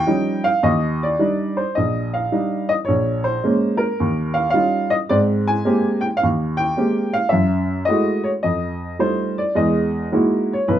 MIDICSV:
0, 0, Header, 1, 2, 480
1, 0, Start_track
1, 0, Key_signature, -3, "major"
1, 0, Tempo, 567108
1, 543, Time_signature, 4, 2, 24, 8
1, 1500, Tempo, 554529
1, 6780, Tempo, 563380
1, 9269, End_track
2, 0, Start_track
2, 0, Title_t, "Upright piano"
2, 0, Program_c, 0, 0
2, 0, Note_on_c, 0, 79, 101
2, 56, Note_on_c, 0, 53, 49
2, 57, Note_on_c, 0, 55, 51
2, 61, Note_on_c, 0, 61, 46
2, 61, Note_on_c, 0, 63, 59
2, 373, Note_on_c, 0, 77, 88
2, 405, Note_off_c, 0, 53, 0
2, 406, Note_off_c, 0, 55, 0
2, 407, Note_off_c, 0, 79, 0
2, 408, Note_off_c, 0, 61, 0
2, 408, Note_off_c, 0, 63, 0
2, 531, Note_on_c, 0, 39, 66
2, 537, Note_off_c, 0, 77, 0
2, 538, Note_on_c, 0, 75, 74
2, 872, Note_on_c, 0, 74, 65
2, 883, Note_off_c, 0, 75, 0
2, 956, Note_off_c, 0, 39, 0
2, 1009, Note_on_c, 0, 55, 47
2, 1012, Note_on_c, 0, 62, 46
2, 1017, Note_on_c, 0, 63, 54
2, 1328, Note_on_c, 0, 72, 63
2, 1361, Note_off_c, 0, 55, 0
2, 1362, Note_off_c, 0, 62, 0
2, 1365, Note_off_c, 0, 63, 0
2, 1367, Note_off_c, 0, 74, 0
2, 1476, Note_off_c, 0, 72, 0
2, 1483, Note_on_c, 0, 75, 63
2, 1497, Note_on_c, 0, 34, 51
2, 1815, Note_on_c, 0, 77, 61
2, 1834, Note_off_c, 0, 75, 0
2, 1920, Note_off_c, 0, 34, 0
2, 1974, Note_on_c, 0, 55, 41
2, 1977, Note_on_c, 0, 62, 37
2, 1978, Note_on_c, 0, 63, 48
2, 2293, Note_on_c, 0, 75, 78
2, 2322, Note_off_c, 0, 77, 0
2, 2326, Note_off_c, 0, 55, 0
2, 2328, Note_off_c, 0, 62, 0
2, 2328, Note_off_c, 0, 63, 0
2, 2337, Note_off_c, 0, 75, 0
2, 2430, Note_on_c, 0, 73, 71
2, 2458, Note_on_c, 0, 34, 57
2, 2752, Note_off_c, 0, 73, 0
2, 2771, Note_on_c, 0, 72, 74
2, 2878, Note_off_c, 0, 34, 0
2, 2939, Note_on_c, 0, 56, 53
2, 2949, Note_on_c, 0, 58, 43
2, 2949, Note_on_c, 0, 61, 55
2, 3232, Note_on_c, 0, 70, 70
2, 3277, Note_off_c, 0, 72, 0
2, 3287, Note_off_c, 0, 56, 0
2, 3292, Note_off_c, 0, 58, 0
2, 3292, Note_off_c, 0, 61, 0
2, 3427, Note_on_c, 0, 39, 55
2, 3721, Note_on_c, 0, 77, 77
2, 3748, Note_off_c, 0, 70, 0
2, 3843, Note_off_c, 0, 39, 0
2, 3851, Note_off_c, 0, 77, 0
2, 3864, Note_on_c, 0, 77, 87
2, 3894, Note_on_c, 0, 55, 41
2, 3900, Note_on_c, 0, 63, 41
2, 3902, Note_on_c, 0, 61, 39
2, 3905, Note_on_c, 0, 65, 52
2, 4210, Note_on_c, 0, 75, 81
2, 4223, Note_off_c, 0, 77, 0
2, 4243, Note_off_c, 0, 55, 0
2, 4246, Note_off_c, 0, 63, 0
2, 4247, Note_off_c, 0, 61, 0
2, 4249, Note_off_c, 0, 65, 0
2, 4253, Note_off_c, 0, 75, 0
2, 4375, Note_on_c, 0, 74, 82
2, 4376, Note_on_c, 0, 60, 68
2, 4380, Note_on_c, 0, 44, 61
2, 4450, Note_off_c, 0, 74, 0
2, 4705, Note_on_c, 0, 80, 86
2, 4795, Note_off_c, 0, 60, 0
2, 4797, Note_off_c, 0, 44, 0
2, 4857, Note_on_c, 0, 56, 52
2, 4858, Note_on_c, 0, 58, 50
2, 4866, Note_on_c, 0, 67, 57
2, 4868, Note_on_c, 0, 60, 48
2, 5153, Note_off_c, 0, 80, 0
2, 5167, Note_on_c, 0, 79, 74
2, 5203, Note_off_c, 0, 56, 0
2, 5203, Note_off_c, 0, 58, 0
2, 5208, Note_off_c, 0, 67, 0
2, 5209, Note_off_c, 0, 60, 0
2, 5210, Note_off_c, 0, 79, 0
2, 5305, Note_on_c, 0, 77, 87
2, 5358, Note_on_c, 0, 39, 53
2, 5383, Note_off_c, 0, 77, 0
2, 5654, Note_on_c, 0, 79, 88
2, 5767, Note_off_c, 0, 39, 0
2, 5827, Note_on_c, 0, 56, 42
2, 5830, Note_on_c, 0, 60, 37
2, 5834, Note_on_c, 0, 58, 40
2, 5838, Note_on_c, 0, 67, 48
2, 6141, Note_on_c, 0, 77, 81
2, 6157, Note_off_c, 0, 79, 0
2, 6169, Note_off_c, 0, 56, 0
2, 6171, Note_off_c, 0, 60, 0
2, 6172, Note_off_c, 0, 58, 0
2, 6174, Note_off_c, 0, 67, 0
2, 6277, Note_on_c, 0, 76, 74
2, 6284, Note_off_c, 0, 77, 0
2, 6303, Note_on_c, 0, 42, 63
2, 6721, Note_off_c, 0, 42, 0
2, 6763, Note_on_c, 0, 75, 74
2, 6785, Note_off_c, 0, 76, 0
2, 6791, Note_on_c, 0, 56, 50
2, 6791, Note_on_c, 0, 57, 45
2, 6795, Note_on_c, 0, 64, 43
2, 6798, Note_on_c, 0, 66, 54
2, 7090, Note_on_c, 0, 73, 61
2, 7112, Note_off_c, 0, 75, 0
2, 7130, Note_off_c, 0, 56, 0
2, 7131, Note_off_c, 0, 57, 0
2, 7132, Note_off_c, 0, 73, 0
2, 7133, Note_off_c, 0, 64, 0
2, 7134, Note_off_c, 0, 66, 0
2, 7254, Note_on_c, 0, 75, 66
2, 7261, Note_on_c, 0, 41, 53
2, 7680, Note_off_c, 0, 41, 0
2, 7704, Note_off_c, 0, 75, 0
2, 7735, Note_on_c, 0, 55, 39
2, 7735, Note_on_c, 0, 57, 34
2, 7738, Note_on_c, 0, 65, 40
2, 7740, Note_on_c, 0, 63, 36
2, 7741, Note_on_c, 0, 72, 70
2, 8065, Note_on_c, 0, 74, 64
2, 8084, Note_off_c, 0, 72, 0
2, 8086, Note_off_c, 0, 55, 0
2, 8086, Note_off_c, 0, 57, 0
2, 8087, Note_off_c, 0, 65, 0
2, 8088, Note_off_c, 0, 63, 0
2, 8208, Note_off_c, 0, 74, 0
2, 8209, Note_on_c, 0, 56, 63
2, 8214, Note_on_c, 0, 40, 65
2, 8220, Note_on_c, 0, 75, 60
2, 8636, Note_off_c, 0, 56, 0
2, 8638, Note_off_c, 0, 40, 0
2, 8669, Note_off_c, 0, 75, 0
2, 8696, Note_on_c, 0, 58, 46
2, 8698, Note_on_c, 0, 56, 51
2, 8699, Note_on_c, 0, 63, 46
2, 8703, Note_on_c, 0, 64, 46
2, 8707, Note_on_c, 0, 66, 55
2, 9046, Note_off_c, 0, 58, 0
2, 9047, Note_off_c, 0, 56, 0
2, 9047, Note_off_c, 0, 63, 0
2, 9047, Note_on_c, 0, 73, 63
2, 9049, Note_off_c, 0, 64, 0
2, 9051, Note_off_c, 0, 66, 0
2, 9171, Note_on_c, 0, 71, 65
2, 9174, Note_on_c, 0, 35, 57
2, 9178, Note_off_c, 0, 73, 0
2, 9269, Note_off_c, 0, 35, 0
2, 9269, Note_off_c, 0, 71, 0
2, 9269, End_track
0, 0, End_of_file